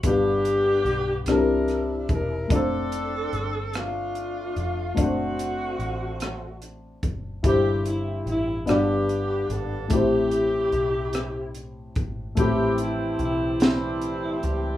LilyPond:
<<
  \new Staff \with { instrumentName = "Saxophone section" } { \time 6/8 \key a \minor \tempo 4. = 49 << { g'4. bes'8 r8 bes'8 | a'4. f'4. | fis'2 r4 | g'8 e'8 e'8 g'4 a'8 |
g'2 r4 | g'8 e'8 e'8 e'4 g'8 | } \\ { <b d'>4. <d' e'>4. | <c' d'>4. <a d'>4. | <a c'>2 r4 | <c' e'>4. <b d'>4. |
<c' e'>2 r4 | <c' e'>4. <g c'>4. | } >> }
  \new Staff \with { instrumentName = "Upright piano" } { \time 6/8 \key a \minor <g b d' f' b'>4. <g c' d' e' a' bes'>4. | <a c' d' f' c''>2. | <a c' d' fis' c''>2. | <e' g' c''>4. <b d' f' g' d''>4. |
<a c' e' g' c''>2. | <a c' e' g' a'>2. | }
  \new Staff \with { instrumentName = "Upright piano" } { \clef bass \time 6/8 \key a \minor g,4. c4. | r2. | r2. | g,4. g,4. |
a,4. r4. | a,4. r4. | }
  \new Staff \with { instrumentName = "Tonewheel organ" } { \time 6/8 \key a \minor r2. | r2. | r2. | r2. |
r2. | <e a c' g'>2. | }
  \new Staff \with { instrumentName = "Fingered electric bass" } { \clef bass \time 6/8 \key a \minor g,,4 b,,8 c,4 e,,8 | f,,4 g,,4. f,,8 | fis,,4 a,,4. fis,,8 | g,,4 a,,8 g,,4 aes,,8 |
a,,4 b,,4. aes,,8 | a,,4 b,,4. des,8 | }
  \new DrumStaff \with { instrumentName = "Drums" } \drummode { \time 6/8 <hh bd>8 hh8 hh8 <hh ss>8 <hh ss>8 <hh bd>8 | <hh bd>8 hh8 hh8 <hh ss>8 hh8 hh8 | <hh bd>8 hh8 hh8 <hh ss>8 hh8 <hh bd>8 | <hh bd>8 hh8 hh8 <hh ss>8 hh8 hh8 |
<hh bd>8 hh8 hh8 <hh ss>8 hh8 <hh bd>8 | <hh bd>8 hh8 hh8 <hh sn>8 hh8 hh8 | }
>>